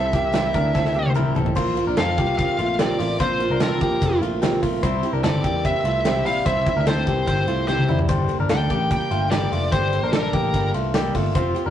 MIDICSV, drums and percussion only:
0, 0, Header, 1, 2, 480
1, 0, Start_track
1, 0, Tempo, 407886
1, 1844, Time_signature, 4, 2, 24, 8
1, 13770, End_track
2, 0, Start_track
2, 0, Title_t, "Drums"
2, 152, Note_on_c, 9, 42, 68
2, 157, Note_on_c, 9, 36, 93
2, 269, Note_off_c, 9, 42, 0
2, 274, Note_off_c, 9, 36, 0
2, 398, Note_on_c, 9, 38, 115
2, 399, Note_on_c, 9, 42, 86
2, 515, Note_off_c, 9, 38, 0
2, 517, Note_off_c, 9, 42, 0
2, 640, Note_on_c, 9, 36, 90
2, 641, Note_on_c, 9, 42, 67
2, 757, Note_off_c, 9, 36, 0
2, 758, Note_off_c, 9, 42, 0
2, 878, Note_on_c, 9, 38, 54
2, 883, Note_on_c, 9, 36, 84
2, 996, Note_off_c, 9, 38, 0
2, 999, Note_on_c, 9, 38, 56
2, 1001, Note_off_c, 9, 36, 0
2, 1116, Note_off_c, 9, 38, 0
2, 1240, Note_on_c, 9, 48, 67
2, 1358, Note_off_c, 9, 48, 0
2, 1359, Note_on_c, 9, 47, 88
2, 1477, Note_off_c, 9, 47, 0
2, 1603, Note_on_c, 9, 43, 94
2, 1720, Note_off_c, 9, 43, 0
2, 1720, Note_on_c, 9, 43, 91
2, 1837, Note_off_c, 9, 43, 0
2, 1840, Note_on_c, 9, 49, 94
2, 1843, Note_on_c, 9, 36, 94
2, 1958, Note_off_c, 9, 49, 0
2, 1961, Note_off_c, 9, 36, 0
2, 2082, Note_on_c, 9, 51, 54
2, 2199, Note_off_c, 9, 51, 0
2, 2319, Note_on_c, 9, 38, 117
2, 2321, Note_on_c, 9, 51, 73
2, 2437, Note_off_c, 9, 38, 0
2, 2439, Note_off_c, 9, 51, 0
2, 2564, Note_on_c, 9, 51, 61
2, 2566, Note_on_c, 9, 36, 88
2, 2682, Note_off_c, 9, 51, 0
2, 2683, Note_off_c, 9, 36, 0
2, 2809, Note_on_c, 9, 36, 89
2, 2809, Note_on_c, 9, 51, 76
2, 2926, Note_off_c, 9, 36, 0
2, 2927, Note_off_c, 9, 51, 0
2, 3045, Note_on_c, 9, 51, 58
2, 3162, Note_off_c, 9, 51, 0
2, 3284, Note_on_c, 9, 38, 124
2, 3287, Note_on_c, 9, 51, 81
2, 3402, Note_off_c, 9, 38, 0
2, 3404, Note_off_c, 9, 51, 0
2, 3532, Note_on_c, 9, 46, 69
2, 3532, Note_on_c, 9, 51, 62
2, 3649, Note_off_c, 9, 46, 0
2, 3649, Note_off_c, 9, 51, 0
2, 3765, Note_on_c, 9, 44, 65
2, 3765, Note_on_c, 9, 51, 72
2, 3766, Note_on_c, 9, 36, 100
2, 3882, Note_off_c, 9, 44, 0
2, 3883, Note_off_c, 9, 36, 0
2, 3883, Note_off_c, 9, 51, 0
2, 4004, Note_on_c, 9, 51, 55
2, 4122, Note_off_c, 9, 51, 0
2, 4241, Note_on_c, 9, 38, 113
2, 4243, Note_on_c, 9, 51, 73
2, 4359, Note_off_c, 9, 38, 0
2, 4360, Note_off_c, 9, 51, 0
2, 4486, Note_on_c, 9, 36, 91
2, 4489, Note_on_c, 9, 51, 55
2, 4604, Note_off_c, 9, 36, 0
2, 4607, Note_off_c, 9, 51, 0
2, 4730, Note_on_c, 9, 36, 93
2, 4736, Note_on_c, 9, 51, 81
2, 4847, Note_off_c, 9, 36, 0
2, 4854, Note_off_c, 9, 51, 0
2, 4974, Note_on_c, 9, 51, 60
2, 5091, Note_off_c, 9, 51, 0
2, 5213, Note_on_c, 9, 38, 120
2, 5215, Note_on_c, 9, 51, 80
2, 5330, Note_off_c, 9, 38, 0
2, 5333, Note_off_c, 9, 51, 0
2, 5447, Note_on_c, 9, 36, 83
2, 5453, Note_on_c, 9, 46, 68
2, 5453, Note_on_c, 9, 51, 57
2, 5565, Note_off_c, 9, 36, 0
2, 5571, Note_off_c, 9, 46, 0
2, 5571, Note_off_c, 9, 51, 0
2, 5686, Note_on_c, 9, 36, 103
2, 5689, Note_on_c, 9, 44, 61
2, 5689, Note_on_c, 9, 51, 68
2, 5803, Note_off_c, 9, 36, 0
2, 5806, Note_off_c, 9, 44, 0
2, 5807, Note_off_c, 9, 51, 0
2, 5920, Note_on_c, 9, 51, 54
2, 6038, Note_off_c, 9, 51, 0
2, 6166, Note_on_c, 9, 38, 108
2, 6168, Note_on_c, 9, 51, 73
2, 6284, Note_off_c, 9, 38, 0
2, 6286, Note_off_c, 9, 51, 0
2, 6404, Note_on_c, 9, 36, 84
2, 6405, Note_on_c, 9, 51, 55
2, 6522, Note_off_c, 9, 36, 0
2, 6522, Note_off_c, 9, 51, 0
2, 6648, Note_on_c, 9, 36, 88
2, 6654, Note_on_c, 9, 51, 74
2, 6765, Note_off_c, 9, 36, 0
2, 6771, Note_off_c, 9, 51, 0
2, 6884, Note_on_c, 9, 51, 61
2, 7002, Note_off_c, 9, 51, 0
2, 7122, Note_on_c, 9, 38, 118
2, 7125, Note_on_c, 9, 51, 75
2, 7240, Note_off_c, 9, 38, 0
2, 7242, Note_off_c, 9, 51, 0
2, 7369, Note_on_c, 9, 46, 66
2, 7369, Note_on_c, 9, 51, 54
2, 7486, Note_off_c, 9, 46, 0
2, 7486, Note_off_c, 9, 51, 0
2, 7602, Note_on_c, 9, 36, 106
2, 7602, Note_on_c, 9, 44, 62
2, 7602, Note_on_c, 9, 51, 72
2, 7719, Note_off_c, 9, 44, 0
2, 7720, Note_off_c, 9, 36, 0
2, 7720, Note_off_c, 9, 51, 0
2, 7842, Note_on_c, 9, 51, 53
2, 7844, Note_on_c, 9, 36, 98
2, 7959, Note_off_c, 9, 51, 0
2, 7962, Note_off_c, 9, 36, 0
2, 8082, Note_on_c, 9, 38, 115
2, 8084, Note_on_c, 9, 51, 72
2, 8200, Note_off_c, 9, 38, 0
2, 8202, Note_off_c, 9, 51, 0
2, 8318, Note_on_c, 9, 51, 56
2, 8320, Note_on_c, 9, 36, 90
2, 8436, Note_off_c, 9, 51, 0
2, 8438, Note_off_c, 9, 36, 0
2, 8561, Note_on_c, 9, 36, 90
2, 8562, Note_on_c, 9, 51, 78
2, 8679, Note_off_c, 9, 36, 0
2, 8680, Note_off_c, 9, 51, 0
2, 8797, Note_on_c, 9, 51, 60
2, 8915, Note_off_c, 9, 51, 0
2, 9039, Note_on_c, 9, 38, 58
2, 9155, Note_on_c, 9, 48, 66
2, 9157, Note_off_c, 9, 38, 0
2, 9272, Note_off_c, 9, 48, 0
2, 9280, Note_on_c, 9, 45, 95
2, 9398, Note_off_c, 9, 45, 0
2, 9402, Note_on_c, 9, 43, 88
2, 9519, Note_on_c, 9, 36, 105
2, 9519, Note_on_c, 9, 44, 59
2, 9520, Note_off_c, 9, 43, 0
2, 9520, Note_on_c, 9, 51, 71
2, 9637, Note_off_c, 9, 36, 0
2, 9637, Note_off_c, 9, 44, 0
2, 9637, Note_off_c, 9, 51, 0
2, 9754, Note_on_c, 9, 51, 54
2, 9871, Note_off_c, 9, 51, 0
2, 9997, Note_on_c, 9, 38, 112
2, 9999, Note_on_c, 9, 51, 74
2, 10114, Note_off_c, 9, 38, 0
2, 10116, Note_off_c, 9, 51, 0
2, 10241, Note_on_c, 9, 36, 83
2, 10242, Note_on_c, 9, 51, 56
2, 10358, Note_off_c, 9, 36, 0
2, 10359, Note_off_c, 9, 51, 0
2, 10484, Note_on_c, 9, 36, 91
2, 10489, Note_on_c, 9, 51, 80
2, 10601, Note_off_c, 9, 36, 0
2, 10607, Note_off_c, 9, 51, 0
2, 10724, Note_on_c, 9, 51, 60
2, 10841, Note_off_c, 9, 51, 0
2, 10963, Note_on_c, 9, 38, 127
2, 10966, Note_on_c, 9, 51, 83
2, 11081, Note_off_c, 9, 38, 0
2, 11083, Note_off_c, 9, 51, 0
2, 11212, Note_on_c, 9, 46, 73
2, 11212, Note_on_c, 9, 51, 56
2, 11329, Note_off_c, 9, 46, 0
2, 11329, Note_off_c, 9, 51, 0
2, 11442, Note_on_c, 9, 36, 103
2, 11443, Note_on_c, 9, 44, 56
2, 11443, Note_on_c, 9, 51, 67
2, 11560, Note_off_c, 9, 36, 0
2, 11561, Note_off_c, 9, 44, 0
2, 11561, Note_off_c, 9, 51, 0
2, 11682, Note_on_c, 9, 51, 57
2, 11799, Note_off_c, 9, 51, 0
2, 11920, Note_on_c, 9, 38, 118
2, 11922, Note_on_c, 9, 51, 70
2, 12038, Note_off_c, 9, 38, 0
2, 12039, Note_off_c, 9, 51, 0
2, 12161, Note_on_c, 9, 36, 89
2, 12161, Note_on_c, 9, 51, 56
2, 12278, Note_off_c, 9, 36, 0
2, 12278, Note_off_c, 9, 51, 0
2, 12402, Note_on_c, 9, 36, 90
2, 12404, Note_on_c, 9, 51, 78
2, 12520, Note_off_c, 9, 36, 0
2, 12521, Note_off_c, 9, 51, 0
2, 12641, Note_on_c, 9, 51, 65
2, 12759, Note_off_c, 9, 51, 0
2, 12876, Note_on_c, 9, 38, 126
2, 12878, Note_on_c, 9, 51, 81
2, 12993, Note_off_c, 9, 38, 0
2, 12996, Note_off_c, 9, 51, 0
2, 13120, Note_on_c, 9, 36, 87
2, 13124, Note_on_c, 9, 46, 70
2, 13124, Note_on_c, 9, 51, 61
2, 13238, Note_off_c, 9, 36, 0
2, 13242, Note_off_c, 9, 46, 0
2, 13242, Note_off_c, 9, 51, 0
2, 13356, Note_on_c, 9, 44, 66
2, 13357, Note_on_c, 9, 51, 71
2, 13359, Note_on_c, 9, 36, 99
2, 13474, Note_off_c, 9, 44, 0
2, 13475, Note_off_c, 9, 51, 0
2, 13476, Note_off_c, 9, 36, 0
2, 13603, Note_on_c, 9, 51, 52
2, 13720, Note_off_c, 9, 51, 0
2, 13770, End_track
0, 0, End_of_file